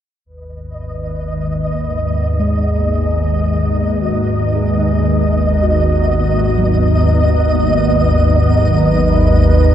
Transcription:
0.25 G#1 D#2 B3 B4 D#5
1.34 D#4
1.78 B4
2.39 G#3 G#4
4.02 F#4
4.36 D#5
4.55 G#4
5.63 F#4
6.58 F#3
8.82 B4

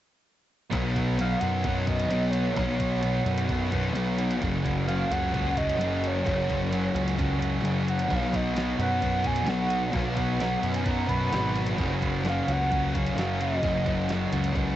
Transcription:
0.70 B1 B2 F#3 B3 D#4 F#4, kick, closed hi-hat
0.94 B3 D#4 F#4, kick, closed hi-hat
1.17 B2 F#3 B3 D#4 F#4, closed hi-hat
1.21 F5
1.40 F#2 D#4 F#4 F#5, closed hi-hat
1.44 B3
1.64 B2 F#3 B3 D#4 F#4, kick, closed hi-hat
1.86 D#4 F#4 D#5, kick, closed hi-hat
1.91 F#3 B3
2.00 closed hi-hat
2.10 B1 B2 F#3 B3 D#4 F#4, closed hi-hat
2.31 F#4 C#5, closed hi-hat
2.35 B3 D#4
2.56 B1 B2 F#3 B3 D#4 F#4, kick, closed hi-hat
2.79 B3 D#4 F#4, kick, closed hi-hat
3.01 B2 F#3 B3 D#4 F#4, closed hi-hat
3.25 F#2 B3 D#4 F#4, closed hi-hat
3.38 closed hi-hat
3.47 B2 F#3 B3 D#4 F#4, kick, closed hi-hat
3.70 B3 D#4 F#4, kick, closed hi-hat
3.75 F#3
3.93 B1 B2 F#3 B3 D#4, closed hi-hat
3.97 F#4
4.18 B3 D#4 F#4, closed hi-hat
4.31 closed hi-hat
4.41 F#1 F#2 C#3 F#3 A#3 C#4 F#4, kick, closed hi-hat
4.63 F#3 A#3 C#4 F#4, kick, closed hi-hat
4.86 F#2 C#3 F#3 A#3 C#4 F#4 F5, closed hi-hat
5.07 C#2 F#3 A#3 C#4 F#4
5.12 F#5, closed hi-hat
5.32 F#2 C#3 F#3 A#3 C#4, kick, closed hi-hat
5.36 F#4
5.55 F#3 A#3 C#4 F#4 D#5, kick, closed hi-hat
5.59 C#3
5.69 closed hi-hat
5.78 F#1 F#2 C#3 F#3 A#3 C#4 F#4, closed hi-hat
5.82 F#3
6.00 F#3 A#3 C#4 F#4, closed hi-hat
6.07 C#5
6.22 F#1 F#2 C#3 F#3 A#3 C#4, kick
6.26 F#4, closed hi-hat
6.46 A#3 C#4 F#4, kick, closed hi-hat
6.51 F#3
6.70 F#2 C#3 F#3 A#3 C#4, closed hi-hat
6.75 F#4
6.94 C#2 F#3 A#3 C#4 F#4, closed hi-hat
7.08 closed hi-hat
7.15 F#2 C#3 F#3 A#3 C#4 F#4, kick
7.19 closed hi-hat
7.38 C#3 F#3 A#3 C#4 F#4
7.42 F#3, closed hi-hat
7.63 F#1 F#2 C#3 F#3 A#3 C#4 F#4, closed hi-hat
7.85 F#3 A#3 C#4 F#4, closed hi-hat
7.89 F#5
7.99 closed hi-hat
8.08 B1 B2 F#3 B3 D#4 F#4, kick, closed hi-hat
8.15 F5
8.23 snare
8.31 B3 D#4 F#4, kick, closed hi-hat
8.36 D#5
8.54 B2 F#3 B3 D#4 F#4, snare, closed hi-hat
8.78 F#2 B3 D#4 F#4, closed hi-hat
8.83 F#5
9.00 B2 F#3 B3 D#4 F#4, kick, closed hi-hat
9.22 B3 D#4 F#4 G#5, kick, closed hi-hat
9.27 F#3
9.36 closed hi-hat
9.45 B1 B2 F#3 B3 D#4 F#4 F#5, snare, closed hi-hat
9.68 B3 D#4 F#4, closed hi-hat
9.91 B1 B2 F#3 B3 D#4 F#4 F5, kick, closed hi-hat
10.14 B3 D#4 F#4 F#5, kick, closed hi-hat
10.38 B2 F#3 B3 D#4 F#4, snare, closed hi-hat
10.60 F#2 B3 D#4 F#4, closed hi-hat
10.74 G#5, closed hi-hat
10.83 B2 F#3 B3 D#4, kick, closed hi-hat
10.87 F#4 A#5
11.07 B3 D#4 F#4 B5, kick, closed hi-hat
11.11 F#3
11.31 G#1 B2 F#3 B3 D#4, snare, closed hi-hat
11.35 F#4
11.55 B3 D#4 F#4, closed hi-hat
11.67 closed hi-hat
11.77 F#1 F#2 C#3 F#3 A#3 C#4 F#4, kick, closed hi-hat
11.92 snare
12.00 A#3 C#4 F#4, kick, closed hi-hat
12.04 F#3
12.23 F#2 C#3 F#3 A#3 C#4 F#4, snare, closed hi-hat
12.28 F#3 F5
12.47 C#2 F#3 A#3 C#4 F#4, closed hi-hat
12.52 F#5
12.69 F#2 C#3 F#3 A#3 C#4 F#4, kick, closed hi-hat
12.75 F#3
12.93 F#3 A#3 C#4 F#4 F5, kick, closed hi-hat
12.98 C#3
13.06 closed hi-hat
13.15 F#1 F#2 F#3 A#3 C#4 F#4, snare, closed hi-hat
13.20 C#3 F#3
13.39 F#3 A#3 C#4 F#4 D#5, closed hi-hat
13.62 F#1 F#2 C#3 F#3 A#3 C#4 F#4, kick, closed hi-hat
13.86 F#3 A#3 C#4 F#4, kick, closed hi-hat
14.08 F#2 C#3 F#3 A#3 C#4, snare, closed hi-hat
14.12 F#4
14.32 C#2 F#3 A#3 C#4 F#4, closed hi-hat
14.44 closed hi-hat
14.54 F#2 C#3 F#3 A#3 C#4 F#4, kick, closed hi-hat

